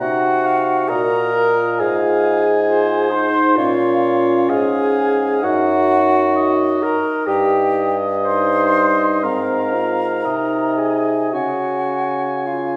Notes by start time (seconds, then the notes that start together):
0.00 C3 D#4 F#4 F#5
0.45 F5
0.88 A#2 F#4 A#4 D#5 A#5
1.34 F4
1.79 G#2 G#4 F5 G#5
2.68 F4 C5
3.12 D#4 C5 C6
3.56 A#2 C#4 F4 C#5 F5
4.49 G#2 G#4 F5 G#5
5.43 F#2 D#4 F#4 F#5
6.36 D#5
6.82 A#4 A#5
7.27 G2 G4 D#5 G5
8.24 D#4 C5 C6
9.23 G#2 C4 A#4 F5 A#5
9.73 F4
10.25 C3 D#4 D#5
10.77 G#4 G#5
11.33 C#3 C#4 F#4 F#5 G#5
12.46 F4 F5